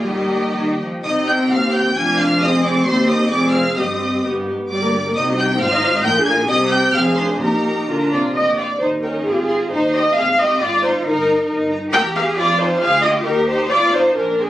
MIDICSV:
0, 0, Header, 1, 6, 480
1, 0, Start_track
1, 0, Key_signature, -3, "minor"
1, 0, Tempo, 482315
1, 66, Time_signature, 2, 2, 24, 8
1, 1504, Tempo, 454545
1, 4868, Key_signature, -3, "major"
1, 5344, Tempo, 445104
1, 7264, Tempo, 474308
1, 8704, Tempo, 451467
1, 11104, Tempo, 442152
1, 13984, Tempo, 458365
1, 15278, End_track
2, 0, Start_track
2, 0, Title_t, "Violin section"
2, 0, Program_c, 0, 48
2, 59, Note_on_c, 0, 79, 44
2, 830, Note_off_c, 0, 79, 0
2, 1035, Note_on_c, 0, 87, 74
2, 1115, Note_off_c, 0, 87, 0
2, 1277, Note_on_c, 0, 91, 85
2, 1356, Note_off_c, 0, 91, 0
2, 1505, Note_on_c, 0, 89, 84
2, 1741, Note_off_c, 0, 89, 0
2, 1743, Note_on_c, 0, 91, 82
2, 1976, Note_on_c, 0, 92, 90
2, 1986, Note_off_c, 0, 91, 0
2, 2221, Note_off_c, 0, 92, 0
2, 2224, Note_on_c, 0, 89, 95
2, 2461, Note_off_c, 0, 89, 0
2, 2466, Note_on_c, 0, 87, 101
2, 2695, Note_on_c, 0, 86, 94
2, 2698, Note_off_c, 0, 87, 0
2, 2924, Note_off_c, 0, 86, 0
2, 2924, Note_on_c, 0, 84, 106
2, 3156, Note_on_c, 0, 87, 102
2, 3161, Note_off_c, 0, 84, 0
2, 3388, Note_on_c, 0, 86, 107
2, 3396, Note_off_c, 0, 87, 0
2, 3622, Note_on_c, 0, 89, 92
2, 3629, Note_off_c, 0, 86, 0
2, 3871, Note_off_c, 0, 89, 0
2, 3879, Note_on_c, 0, 87, 80
2, 4375, Note_off_c, 0, 87, 0
2, 4870, Note_on_c, 0, 86, 83
2, 5313, Note_off_c, 0, 86, 0
2, 5354, Note_on_c, 0, 87, 87
2, 5440, Note_off_c, 0, 87, 0
2, 5604, Note_on_c, 0, 91, 87
2, 5690, Note_off_c, 0, 91, 0
2, 5838, Note_on_c, 0, 89, 96
2, 6299, Note_off_c, 0, 89, 0
2, 6309, Note_on_c, 0, 91, 114
2, 6533, Note_on_c, 0, 92, 110
2, 6539, Note_off_c, 0, 91, 0
2, 6619, Note_off_c, 0, 92, 0
2, 6780, Note_on_c, 0, 87, 113
2, 7017, Note_off_c, 0, 87, 0
2, 7018, Note_on_c, 0, 91, 110
2, 7263, Note_on_c, 0, 89, 105
2, 7264, Note_off_c, 0, 91, 0
2, 7344, Note_off_c, 0, 89, 0
2, 7508, Note_on_c, 0, 84, 80
2, 7589, Note_off_c, 0, 84, 0
2, 7738, Note_on_c, 0, 82, 74
2, 8452, Note_off_c, 0, 82, 0
2, 8938, Note_on_c, 0, 79, 41
2, 9017, Note_off_c, 0, 79, 0
2, 9424, Note_on_c, 0, 79, 41
2, 9502, Note_off_c, 0, 79, 0
2, 9907, Note_on_c, 0, 84, 45
2, 9986, Note_off_c, 0, 84, 0
2, 10387, Note_on_c, 0, 84, 47
2, 10464, Note_off_c, 0, 84, 0
2, 10877, Note_on_c, 0, 84, 57
2, 10951, Note_off_c, 0, 84, 0
2, 11356, Note_on_c, 0, 82, 52
2, 11432, Note_off_c, 0, 82, 0
2, 11842, Note_on_c, 0, 82, 64
2, 11916, Note_off_c, 0, 82, 0
2, 12306, Note_on_c, 0, 82, 61
2, 12381, Note_off_c, 0, 82, 0
2, 12531, Note_on_c, 0, 82, 66
2, 12618, Note_off_c, 0, 82, 0
2, 12776, Note_on_c, 0, 82, 60
2, 12863, Note_off_c, 0, 82, 0
2, 13023, Note_on_c, 0, 80, 64
2, 13110, Note_off_c, 0, 80, 0
2, 13273, Note_on_c, 0, 80, 59
2, 13360, Note_off_c, 0, 80, 0
2, 13510, Note_on_c, 0, 80, 67
2, 13597, Note_off_c, 0, 80, 0
2, 13738, Note_on_c, 0, 80, 65
2, 13825, Note_off_c, 0, 80, 0
2, 13990, Note_on_c, 0, 79, 62
2, 14074, Note_off_c, 0, 79, 0
2, 14235, Note_on_c, 0, 79, 57
2, 14318, Note_off_c, 0, 79, 0
2, 14477, Note_on_c, 0, 77, 61
2, 14560, Note_off_c, 0, 77, 0
2, 14710, Note_on_c, 0, 77, 59
2, 14794, Note_off_c, 0, 77, 0
2, 14945, Note_on_c, 0, 80, 55
2, 15029, Note_off_c, 0, 80, 0
2, 15181, Note_on_c, 0, 80, 49
2, 15265, Note_off_c, 0, 80, 0
2, 15278, End_track
3, 0, Start_track
3, 0, Title_t, "Violin section"
3, 0, Program_c, 1, 48
3, 59, Note_on_c, 1, 75, 46
3, 63, Note_on_c, 1, 67, 45
3, 830, Note_off_c, 1, 75, 0
3, 832, Note_off_c, 1, 67, 0
3, 1044, Note_on_c, 1, 75, 72
3, 1260, Note_off_c, 1, 75, 0
3, 1279, Note_on_c, 1, 79, 65
3, 1497, Note_on_c, 1, 77, 74
3, 1506, Note_off_c, 1, 79, 0
3, 1742, Note_off_c, 1, 77, 0
3, 1743, Note_on_c, 1, 79, 75
3, 1985, Note_on_c, 1, 80, 86
3, 1986, Note_off_c, 1, 79, 0
3, 2216, Note_on_c, 1, 77, 80
3, 2226, Note_off_c, 1, 80, 0
3, 2457, Note_off_c, 1, 77, 0
3, 2462, Note_on_c, 1, 75, 88
3, 2695, Note_off_c, 1, 75, 0
3, 2710, Note_on_c, 1, 74, 84
3, 2931, Note_on_c, 1, 72, 95
3, 2936, Note_off_c, 1, 74, 0
3, 3160, Note_off_c, 1, 72, 0
3, 3171, Note_on_c, 1, 75, 88
3, 3399, Note_off_c, 1, 75, 0
3, 3415, Note_on_c, 1, 74, 83
3, 3639, Note_on_c, 1, 77, 83
3, 3648, Note_off_c, 1, 74, 0
3, 3884, Note_off_c, 1, 77, 0
3, 3903, Note_on_c, 1, 75, 72
3, 4387, Note_off_c, 1, 75, 0
3, 4878, Note_on_c, 1, 74, 78
3, 5317, Note_off_c, 1, 74, 0
3, 5358, Note_on_c, 1, 75, 72
3, 5584, Note_on_c, 1, 79, 83
3, 5589, Note_off_c, 1, 75, 0
3, 5822, Note_off_c, 1, 79, 0
3, 5834, Note_on_c, 1, 77, 93
3, 6307, Note_off_c, 1, 77, 0
3, 6310, Note_on_c, 1, 79, 94
3, 6396, Note_off_c, 1, 79, 0
3, 6553, Note_on_c, 1, 80, 95
3, 6782, Note_off_c, 1, 80, 0
3, 6788, Note_on_c, 1, 75, 101
3, 6874, Note_off_c, 1, 75, 0
3, 7032, Note_on_c, 1, 79, 97
3, 7266, Note_off_c, 1, 79, 0
3, 7284, Note_on_c, 1, 77, 90
3, 7507, Note_on_c, 1, 72, 79
3, 7510, Note_off_c, 1, 77, 0
3, 7746, Note_off_c, 1, 72, 0
3, 7764, Note_on_c, 1, 70, 67
3, 8228, Note_off_c, 1, 70, 0
3, 8246, Note_on_c, 1, 62, 52
3, 8462, Note_off_c, 1, 62, 0
3, 8483, Note_on_c, 1, 65, 54
3, 8713, Note_off_c, 1, 65, 0
3, 8715, Note_on_c, 1, 67, 62
3, 8949, Note_off_c, 1, 67, 0
3, 8952, Note_on_c, 1, 65, 50
3, 9037, Note_off_c, 1, 65, 0
3, 9199, Note_on_c, 1, 63, 54
3, 9284, Note_off_c, 1, 63, 0
3, 9431, Note_on_c, 1, 61, 51
3, 9667, Note_off_c, 1, 61, 0
3, 9669, Note_on_c, 1, 60, 60
3, 10145, Note_off_c, 1, 60, 0
3, 10159, Note_on_c, 1, 63, 60
3, 10391, Note_off_c, 1, 63, 0
3, 10417, Note_on_c, 1, 67, 63
3, 10502, Note_off_c, 1, 67, 0
3, 10638, Note_on_c, 1, 68, 80
3, 10723, Note_off_c, 1, 68, 0
3, 10880, Note_on_c, 1, 67, 68
3, 11107, Note_off_c, 1, 67, 0
3, 11118, Note_on_c, 1, 65, 76
3, 11354, Note_off_c, 1, 65, 0
3, 11359, Note_on_c, 1, 63, 73
3, 11583, Note_off_c, 1, 63, 0
3, 11596, Note_on_c, 1, 63, 74
3, 12061, Note_off_c, 1, 63, 0
3, 12523, Note_on_c, 1, 70, 96
3, 12753, Note_off_c, 1, 70, 0
3, 12775, Note_on_c, 1, 68, 84
3, 13014, Note_off_c, 1, 68, 0
3, 13016, Note_on_c, 1, 65, 94
3, 13255, Note_on_c, 1, 63, 76
3, 13261, Note_off_c, 1, 65, 0
3, 13493, Note_on_c, 1, 68, 92
3, 13501, Note_off_c, 1, 63, 0
3, 13734, Note_off_c, 1, 68, 0
3, 13744, Note_on_c, 1, 67, 82
3, 13982, Note_on_c, 1, 63, 76
3, 13985, Note_off_c, 1, 67, 0
3, 14213, Note_off_c, 1, 63, 0
3, 14226, Note_on_c, 1, 63, 79
3, 14446, Note_on_c, 1, 65, 84
3, 14457, Note_off_c, 1, 63, 0
3, 14687, Note_off_c, 1, 65, 0
3, 14691, Note_on_c, 1, 63, 73
3, 14919, Note_on_c, 1, 62, 72
3, 14931, Note_off_c, 1, 63, 0
3, 15003, Note_off_c, 1, 62, 0
3, 15160, Note_on_c, 1, 60, 63
3, 15243, Note_off_c, 1, 60, 0
3, 15278, End_track
4, 0, Start_track
4, 0, Title_t, "Viola section"
4, 0, Program_c, 2, 48
4, 49, Note_on_c, 2, 55, 53
4, 539, Note_off_c, 2, 55, 0
4, 1036, Note_on_c, 2, 63, 57
4, 1040, Note_on_c, 2, 60, 58
4, 1468, Note_off_c, 2, 63, 0
4, 1501, Note_on_c, 2, 67, 59
4, 1943, Note_off_c, 2, 60, 0
4, 1985, Note_off_c, 2, 67, 0
4, 1994, Note_on_c, 2, 62, 63
4, 1994, Note_on_c, 2, 65, 63
4, 2457, Note_off_c, 2, 65, 0
4, 2466, Note_off_c, 2, 62, 0
4, 2470, Note_on_c, 2, 60, 77
4, 2470, Note_on_c, 2, 68, 73
4, 2921, Note_off_c, 2, 60, 0
4, 2924, Note_off_c, 2, 68, 0
4, 2931, Note_on_c, 2, 67, 84
4, 2934, Note_on_c, 2, 60, 79
4, 3368, Note_off_c, 2, 67, 0
4, 3370, Note_off_c, 2, 60, 0
4, 3403, Note_on_c, 2, 60, 81
4, 3406, Note_on_c, 2, 68, 79
4, 3873, Note_off_c, 2, 60, 0
4, 3879, Note_off_c, 2, 68, 0
4, 3885, Note_on_c, 2, 60, 61
4, 3886, Note_on_c, 2, 67, 64
4, 4368, Note_off_c, 2, 60, 0
4, 4378, Note_off_c, 2, 67, 0
4, 4391, Note_on_c, 2, 59, 54
4, 4392, Note_on_c, 2, 67, 56
4, 4654, Note_off_c, 2, 67, 0
4, 4659, Note_off_c, 2, 59, 0
4, 4870, Note_on_c, 2, 55, 57
4, 4875, Note_on_c, 2, 67, 56
4, 4982, Note_off_c, 2, 55, 0
4, 4984, Note_off_c, 2, 67, 0
4, 4996, Note_on_c, 2, 58, 52
4, 4998, Note_on_c, 2, 70, 51
4, 5113, Note_off_c, 2, 58, 0
4, 5114, Note_off_c, 2, 70, 0
4, 5119, Note_on_c, 2, 67, 50
4, 5121, Note_on_c, 2, 55, 49
4, 5233, Note_off_c, 2, 67, 0
4, 5234, Note_off_c, 2, 55, 0
4, 5242, Note_on_c, 2, 70, 51
4, 5243, Note_on_c, 2, 58, 53
4, 5353, Note_off_c, 2, 58, 0
4, 5353, Note_off_c, 2, 70, 0
4, 5359, Note_on_c, 2, 63, 60
4, 5367, Note_on_c, 2, 67, 55
4, 5463, Note_off_c, 2, 63, 0
4, 5468, Note_off_c, 2, 67, 0
4, 5489, Note_on_c, 2, 60, 58
4, 5490, Note_on_c, 2, 63, 56
4, 5587, Note_off_c, 2, 63, 0
4, 5596, Note_off_c, 2, 60, 0
4, 5600, Note_on_c, 2, 63, 56
4, 5604, Note_on_c, 2, 67, 56
4, 5710, Note_off_c, 2, 63, 0
4, 5712, Note_off_c, 2, 67, 0
4, 5732, Note_on_c, 2, 60, 54
4, 5732, Note_on_c, 2, 63, 58
4, 5836, Note_off_c, 2, 60, 0
4, 5836, Note_off_c, 2, 63, 0
4, 5848, Note_on_c, 2, 65, 67
4, 5849, Note_on_c, 2, 72, 67
4, 5947, Note_off_c, 2, 65, 0
4, 5947, Note_off_c, 2, 72, 0
4, 5956, Note_on_c, 2, 75, 59
4, 5963, Note_on_c, 2, 63, 60
4, 6069, Note_off_c, 2, 75, 0
4, 6072, Note_off_c, 2, 63, 0
4, 6091, Note_on_c, 2, 72, 57
4, 6097, Note_on_c, 2, 65, 61
4, 6196, Note_off_c, 2, 72, 0
4, 6199, Note_off_c, 2, 65, 0
4, 6206, Note_on_c, 2, 63, 65
4, 6211, Note_on_c, 2, 75, 66
4, 6313, Note_off_c, 2, 63, 0
4, 6316, Note_off_c, 2, 75, 0
4, 6332, Note_on_c, 2, 70, 68
4, 6334, Note_on_c, 2, 65, 69
4, 6429, Note_off_c, 2, 70, 0
4, 6430, Note_off_c, 2, 65, 0
4, 6443, Note_on_c, 2, 68, 69
4, 6445, Note_on_c, 2, 62, 68
4, 6551, Note_off_c, 2, 68, 0
4, 6552, Note_off_c, 2, 62, 0
4, 6561, Note_on_c, 2, 70, 70
4, 6565, Note_on_c, 2, 65, 71
4, 6670, Note_off_c, 2, 70, 0
4, 6673, Note_off_c, 2, 65, 0
4, 6679, Note_on_c, 2, 62, 65
4, 6680, Note_on_c, 2, 68, 67
4, 6790, Note_off_c, 2, 62, 0
4, 6791, Note_off_c, 2, 68, 0
4, 6792, Note_on_c, 2, 67, 79
4, 6794, Note_on_c, 2, 60, 82
4, 7238, Note_off_c, 2, 67, 0
4, 7239, Note_off_c, 2, 60, 0
4, 7273, Note_on_c, 2, 60, 73
4, 7278, Note_on_c, 2, 68, 77
4, 7501, Note_off_c, 2, 60, 0
4, 7508, Note_on_c, 2, 62, 65
4, 7747, Note_off_c, 2, 62, 0
4, 7749, Note_off_c, 2, 68, 0
4, 7754, Note_on_c, 2, 63, 63
4, 7754, Note_on_c, 2, 67, 62
4, 8223, Note_off_c, 2, 67, 0
4, 8232, Note_off_c, 2, 63, 0
4, 8234, Note_on_c, 2, 62, 59
4, 8234, Note_on_c, 2, 65, 58
4, 8234, Note_on_c, 2, 70, 67
4, 8455, Note_off_c, 2, 70, 0
4, 8470, Note_on_c, 2, 74, 62
4, 8501, Note_off_c, 2, 62, 0
4, 8501, Note_off_c, 2, 65, 0
4, 8551, Note_off_c, 2, 74, 0
4, 8700, Note_on_c, 2, 75, 68
4, 8932, Note_on_c, 2, 74, 59
4, 8941, Note_off_c, 2, 75, 0
4, 9175, Note_on_c, 2, 72, 66
4, 9177, Note_off_c, 2, 74, 0
4, 9260, Note_off_c, 2, 72, 0
4, 9413, Note_on_c, 2, 70, 62
4, 9658, Note_off_c, 2, 70, 0
4, 9659, Note_on_c, 2, 68, 67
4, 9732, Note_on_c, 2, 67, 51
4, 9738, Note_off_c, 2, 68, 0
4, 9813, Note_on_c, 2, 68, 69
4, 9814, Note_off_c, 2, 67, 0
4, 10144, Note_on_c, 2, 72, 77
4, 10152, Note_off_c, 2, 68, 0
4, 10384, Note_off_c, 2, 72, 0
4, 10395, Note_on_c, 2, 75, 79
4, 10615, Note_on_c, 2, 77, 91
4, 10632, Note_off_c, 2, 75, 0
4, 10857, Note_on_c, 2, 75, 80
4, 10861, Note_off_c, 2, 77, 0
4, 11088, Note_on_c, 2, 74, 88
4, 11101, Note_off_c, 2, 75, 0
4, 11338, Note_on_c, 2, 72, 82
4, 11339, Note_off_c, 2, 74, 0
4, 11424, Note_off_c, 2, 72, 0
4, 11590, Note_on_c, 2, 70, 81
4, 12058, Note_off_c, 2, 70, 0
4, 12533, Note_on_c, 2, 79, 116
4, 12620, Note_off_c, 2, 79, 0
4, 12782, Note_on_c, 2, 77, 93
4, 12869, Note_off_c, 2, 77, 0
4, 13014, Note_on_c, 2, 74, 106
4, 13251, Note_on_c, 2, 72, 87
4, 13255, Note_off_c, 2, 74, 0
4, 13492, Note_on_c, 2, 77, 105
4, 13499, Note_off_c, 2, 72, 0
4, 13720, Note_on_c, 2, 75, 86
4, 13739, Note_off_c, 2, 77, 0
4, 13807, Note_off_c, 2, 75, 0
4, 13969, Note_on_c, 2, 70, 97
4, 14209, Note_off_c, 2, 70, 0
4, 14209, Note_on_c, 2, 72, 91
4, 14441, Note_on_c, 2, 74, 103
4, 14449, Note_off_c, 2, 72, 0
4, 14682, Note_on_c, 2, 72, 86
4, 14690, Note_off_c, 2, 74, 0
4, 14931, Note_off_c, 2, 72, 0
4, 14934, Note_on_c, 2, 70, 86
4, 15175, Note_off_c, 2, 70, 0
4, 15183, Note_on_c, 2, 68, 76
4, 15278, Note_off_c, 2, 68, 0
4, 15278, End_track
5, 0, Start_track
5, 0, Title_t, "Cello section"
5, 0, Program_c, 3, 48
5, 68, Note_on_c, 3, 51, 49
5, 509, Note_off_c, 3, 51, 0
5, 561, Note_on_c, 3, 51, 49
5, 789, Note_off_c, 3, 51, 0
5, 815, Note_on_c, 3, 53, 48
5, 1046, Note_off_c, 3, 53, 0
5, 1060, Note_on_c, 3, 48, 60
5, 1481, Note_off_c, 3, 48, 0
5, 1510, Note_on_c, 3, 39, 53
5, 1987, Note_on_c, 3, 41, 72
5, 1990, Note_off_c, 3, 39, 0
5, 2910, Note_off_c, 3, 41, 0
5, 2936, Note_on_c, 3, 39, 88
5, 3371, Note_off_c, 3, 39, 0
5, 3403, Note_on_c, 3, 41, 77
5, 3886, Note_off_c, 3, 41, 0
5, 3888, Note_on_c, 3, 43, 66
5, 4368, Note_off_c, 3, 43, 0
5, 4381, Note_on_c, 3, 43, 59
5, 4608, Note_off_c, 3, 43, 0
5, 4624, Note_on_c, 3, 44, 54
5, 4868, Note_off_c, 3, 44, 0
5, 4870, Note_on_c, 3, 43, 67
5, 5313, Note_off_c, 3, 43, 0
5, 5353, Note_on_c, 3, 48, 66
5, 5825, Note_off_c, 3, 48, 0
5, 5832, Note_on_c, 3, 44, 76
5, 6306, Note_off_c, 3, 44, 0
5, 6310, Note_on_c, 3, 46, 80
5, 6784, Note_on_c, 3, 48, 91
5, 6785, Note_off_c, 3, 46, 0
5, 7234, Note_off_c, 3, 48, 0
5, 7274, Note_on_c, 3, 41, 71
5, 7738, Note_off_c, 3, 41, 0
5, 7748, Note_on_c, 3, 46, 63
5, 8181, Note_off_c, 3, 46, 0
5, 8226, Note_on_c, 3, 50, 60
5, 8451, Note_off_c, 3, 50, 0
5, 8467, Note_on_c, 3, 48, 55
5, 8705, Note_off_c, 3, 48, 0
5, 9193, Note_on_c, 3, 63, 49
5, 9639, Note_off_c, 3, 63, 0
5, 9669, Note_on_c, 3, 65, 55
5, 10154, Note_off_c, 3, 65, 0
5, 10157, Note_on_c, 3, 63, 54
5, 10623, Note_off_c, 3, 63, 0
5, 10623, Note_on_c, 3, 60, 65
5, 11093, Note_off_c, 3, 60, 0
5, 11100, Note_on_c, 3, 65, 67
5, 11581, Note_on_c, 3, 63, 77
5, 11586, Note_off_c, 3, 65, 0
5, 12054, Note_off_c, 3, 63, 0
5, 12067, Note_on_c, 3, 63, 70
5, 12530, Note_off_c, 3, 63, 0
5, 12545, Note_on_c, 3, 67, 88
5, 13014, Note_off_c, 3, 67, 0
5, 13015, Note_on_c, 3, 65, 77
5, 13969, Note_on_c, 3, 67, 80
5, 13983, Note_off_c, 3, 65, 0
5, 14452, Note_off_c, 3, 67, 0
5, 14455, Note_on_c, 3, 65, 78
5, 14928, Note_off_c, 3, 65, 0
5, 14937, Note_on_c, 3, 62, 64
5, 15278, Note_off_c, 3, 62, 0
5, 15278, End_track
6, 0, Start_track
6, 0, Title_t, "Double bass section"
6, 0, Program_c, 4, 48
6, 69, Note_on_c, 4, 39, 45
6, 835, Note_off_c, 4, 39, 0
6, 1055, Note_on_c, 4, 36, 57
6, 1478, Note_off_c, 4, 36, 0
6, 1512, Note_on_c, 4, 39, 56
6, 1991, Note_off_c, 4, 39, 0
6, 1997, Note_on_c, 4, 29, 67
6, 2915, Note_off_c, 4, 29, 0
6, 2945, Note_on_c, 4, 39, 82
6, 3376, Note_off_c, 4, 39, 0
6, 3414, Note_on_c, 4, 29, 83
6, 3892, Note_off_c, 4, 29, 0
6, 3899, Note_on_c, 4, 31, 67
6, 4382, Note_off_c, 4, 31, 0
6, 4395, Note_on_c, 4, 31, 53
6, 4480, Note_off_c, 4, 31, 0
6, 4880, Note_on_c, 4, 31, 64
6, 5319, Note_off_c, 4, 31, 0
6, 5357, Note_on_c, 4, 36, 72
6, 5826, Note_on_c, 4, 32, 76
6, 5827, Note_off_c, 4, 36, 0
6, 6303, Note_off_c, 4, 32, 0
6, 6309, Note_on_c, 4, 34, 87
6, 6785, Note_off_c, 4, 34, 0
6, 6790, Note_on_c, 4, 36, 81
6, 7237, Note_off_c, 4, 36, 0
6, 7278, Note_on_c, 4, 29, 80
6, 7740, Note_off_c, 4, 29, 0
6, 7757, Note_on_c, 4, 34, 64
6, 8505, Note_off_c, 4, 34, 0
6, 8715, Note_on_c, 4, 39, 51
6, 9115, Note_off_c, 4, 39, 0
6, 9192, Note_on_c, 4, 39, 50
6, 9592, Note_off_c, 4, 39, 0
6, 9672, Note_on_c, 4, 32, 56
6, 10075, Note_off_c, 4, 32, 0
6, 10160, Note_on_c, 4, 39, 56
6, 10555, Note_off_c, 4, 39, 0
6, 10640, Note_on_c, 4, 32, 63
6, 11032, Note_off_c, 4, 32, 0
6, 11116, Note_on_c, 4, 32, 66
6, 11514, Note_off_c, 4, 32, 0
6, 11593, Note_on_c, 4, 31, 71
6, 11990, Note_off_c, 4, 31, 0
6, 12067, Note_on_c, 4, 31, 73
6, 12460, Note_off_c, 4, 31, 0
6, 12548, Note_on_c, 4, 40, 74
6, 12968, Note_off_c, 4, 40, 0
6, 13020, Note_on_c, 4, 41, 79
6, 13448, Note_off_c, 4, 41, 0
6, 13508, Note_on_c, 4, 38, 76
6, 13930, Note_off_c, 4, 38, 0
6, 13987, Note_on_c, 4, 39, 72
6, 14404, Note_off_c, 4, 39, 0
6, 14459, Note_on_c, 4, 32, 70
6, 14882, Note_off_c, 4, 32, 0
6, 14938, Note_on_c, 4, 34, 67
6, 15278, Note_off_c, 4, 34, 0
6, 15278, End_track
0, 0, End_of_file